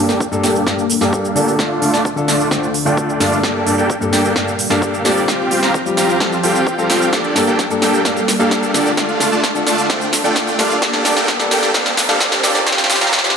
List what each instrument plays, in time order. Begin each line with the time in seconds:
Already playing: grand piano G2 A#3 D4 G4 A4, analog synth pad G3 A#3 D4 A4, riser
0.09 supersaw synth A#3 D4 G4 A4 G5, snare, cabasa
0.20 kick, cabasa
0.31 grand piano G2 A#3 D4 G4 A4, cabasa
0.44 supersaw synth A#3 D4 G4 A4 G5, snare, open hi-hat, cabasa
0.56 cabasa
0.66 grand piano G2 A#3 D4 G4 A#4, supersaw synth A#3 D4 G4 A4 F5, kick, snare, cabasa
0.79 cabasa
0.90 open hi-hat, cabasa
1.01 grand piano G2 A#3 D4 G4 A4, supersaw synth A#3 D4 G4 A4 F5, snare, cabasa
1.13 kick, cabasa
1.25 cabasa
1.35 grand piano D3 A3 D4 F4 A4, supersaw synth A#3 D4 G4 A4 D5, open hi-hat, cabasa
1.48 cabasa
1.59 analog synth pad D3 D4 F4, supersaw synth A3 D4 F4 D5 F5, kick, snare, cabasa
1.81 grand piano D3 A3 D4 F4 A4, open hi-hat, cabasa
1.94 supersaw synth A3 D4 F4 D5 A5, snare, cabasa
2.05 kick, cabasa
2.16 grand piano D3 A3 D4 F4 A4, cabasa
2.28 supersaw synth A3 D4 F4 D5 A5, snare, open hi-hat, cabasa
2.40 cabasa
2.51 grand piano D3 A3 D4 F4 C5, supersaw synth D4 F4 D5 G5, kick, snare, cabasa
2.63 cabasa
2.74 open hi-hat, cabasa
2.85 grand piano D3 A3 D4 F4 A4, supersaw synth A3 D4 F4 D5 G5, cabasa
2.97 kick, cabasa
3.10 cabasa
3.20 grand piano G2 A#3 D4 G4 A4, supersaw synth A3 D4 F4 D5 F5, snare, open hi-hat, cabasa
3.33 cabasa
3.43 analog synth pad G3 A#3, supersaw synth A#3 D4 G4 A4 D5, kick, snare, cabasa
3.66 grand piano G2 A#3 D4 G4 A4, open hi-hat, cabasa
3.78 supersaw synth A#3 D4 G4 A4 G5, cabasa
3.90 kick, cabasa
4.01 grand piano G2 A#3 D4 G4 A4, cabasa
4.13 supersaw synth A#3 D4 G4 A4 G5, snare, open hi-hat, cabasa
4.25 cabasa
4.35 grand piano G2 A#3 D4 G4 A#4, supersaw synth A#3 D4 G4 A4 F5, kick, snare, cabasa
4.48 cabasa
4.59 open hi-hat, cabasa
4.70 grand piano G2 A#3 D4 G4 A4, supersaw synth A#3 D4 G4 A4 F5, snare, cabasa
4.82 kick, cabasa
4.94 cabasa
5.04 grand piano G3 C4 F4 G4, supersaw synth A#3 D4 G4 A4 D5, snare, open hi-hat, cabasa
5.17 cabasa
5.28 analog synth pad F3 F4 G4 C5, supersaw synth C4 F4 G4 F5, kick, snare, cabasa
5.51 grand piano G3 C4 F4 G4, open hi-hat, cabasa
5.63 supersaw synth C4 F4 G4 F5 A#5, snare, cabasa
5.74 kick, cabasa
5.85 grand piano G3 C4 F4 G4, cabasa
5.97 supersaw synth C4 F4 G4 F5 A#5, snare, open hi-hat, cabasa
6.09 cabasa
6.20 grand piano G3 C4 F4 A4, supersaw synth A5, kick, snare, cabasa
6.33 cabasa
6.43 grand piano G3 C4 F4 A4, supersaw synth C4 F4 G4 F5 G5, open hi-hat, cabasa
6.56 cabasa
6.67 kick, cabasa
6.78 grand piano G3 C4 F4 A4, supersaw synth C4 F4 G4 F5 A#5, cabasa
6.90 supersaw synth C4 F4 G4 F5 G5, snare, open hi-hat, cabasa
7.02 cabasa
7.13 analog synth pad G3 A#3 D4 A4, supersaw synth A#3 D4 G4 A4 D5, kick, snare, closed hi-hat, cabasa
7.24 closed hi-hat
7.35 grand piano G2 A#3 D4 G4 A4, snare, open hi-hat, cabasa
7.47 supersaw synth A#3 D4 G4 A4 G5, cabasa
7.59 kick, snare, closed hi-hat, cabasa
7.70 grand piano G2 A#3 D4 G4 A4, closed hi-hat, cabasa
7.82 supersaw synth A#3 D4 G4 A4 G5, snare, open hi-hat, cabasa
7.94 closed hi-hat, cabasa
8.05 grand piano G2 A#3 D4 G4 A#4, supersaw synth A#3 D4 G4 A4 F5, kick, snare, closed hi-hat, cabasa
8.17 closed hi-hat, cabasa
8.28 snare, open hi-hat, cabasa
8.39 grand piano G2 A#3 D4 G4 A4, supersaw synth A#3 D4 G4 A4 F5, closed hi-hat, cabasa
8.51 kick, snare, closed hi-hat, cabasa
8.63 closed hi-hat, cabasa
8.74 grand piano D3 A3 D4 F4 A4, supersaw synth A#3 D4 G4 A4 D5, snare, open hi-hat, cabasa
8.86 closed hi-hat, cabasa
8.97 analog synth pad D3 F4, supersaw synth A3 D4 F4 D5 F5, kick, snare, closed hi-hat, cabasa
9.09 closed hi-hat
9.20 grand piano D3 A3 D4 F4 A4, snare, open hi-hat, cabasa
9.32 supersaw synth A3 D4 F4 D5 A5, closed hi-hat, cabasa
9.44 kick, snare, closed hi-hat, cabasa
9.54 grand piano D3 A3 D4 F4 A4, closed hi-hat, cabasa
9.67 supersaw synth A3 D4 F4 D5 A5, snare, open hi-hat, cabasa
9.78 closed hi-hat, cabasa
9.89 grand piano D3 A3 D4 F4 C5, supersaw synth A3 D4 F4 G5, kick, snare, closed hi-hat, cabasa
10.01 closed hi-hat, cabasa
10.13 snare, open hi-hat, cabasa
10.24 grand piano D3 A3 D4 F4 A4, supersaw synth A3 D4 F4 D5 G5, closed hi-hat, cabasa
10.36 kick, snare, closed hi-hat, cabasa
10.47 closed hi-hat, cabasa
10.58 grand piano G2 A#3 D4 G4 A4, supersaw synth A3 D4 F4 D5 F5, snare, open hi-hat, cabasa
10.70 closed hi-hat, cabasa
10.82 analog synth pad G3 A#3, supersaw synth A#3 D4 G4 A4 D5, kick, snare, closed hi-hat, cabasa
10.94 snare, closed hi-hat
11.04 grand piano G2 A#3 D4 G4 A4, snare, open hi-hat, cabasa
11.17 supersaw synth A#3 D4 G4 A4 G5, snare, cabasa
11.28 kick, snare, closed hi-hat, cabasa
11.39 grand piano G2 A#3 D4 G4 A4, snare, closed hi-hat, cabasa
11.51 supersaw synth A#3 D4 G4 A4 G5, snare, open hi-hat, cabasa
11.63 snare, closed hi-hat, cabasa
11.74 grand piano G2 A#3 D4 G4 A#4, supersaw synth A#3 G4 A4, kick, snare, closed hi-hat, cabasa
11.86 snare, closed hi-hat, cabasa
11.97 snare, open hi-hat, cabasa
12.08 grand piano G2 A#3 D4 G4 A4, supersaw synth A#3 D4 G4 A4 F5, snare, cabasa
12.20 kick, snare, closed hi-hat, cabasa
12.32 snare, closed hi-hat, cabasa
12.43 grand piano G3 C4 F4 G4, supersaw synth A#3 D4 G4 A4 D5, snare, open hi-hat, cabasa
12.55 snare, closed hi-hat, cabasa
12.67 analog synth pad F3 F4 G4 C5, supersaw synth C4 F4 G4 F5 G5, kick, snare, closed hi-hat, cabasa
12.72 snare
12.78 snare, closed hi-hat, cabasa
12.84 snare
12.89 grand piano G3 C4 F4 G4, snare, open hi-hat, cabasa
12.95 snare
13.01 supersaw synth C4 F4 G4 F5 A#5, snare, closed hi-hat, cabasa
13.07 snare
13.13 kick, snare, closed hi-hat, cabasa
13.18 snare
13.24 grand piano G3 C4 F4 G4, snare, closed hi-hat, cabasa
13.30 snare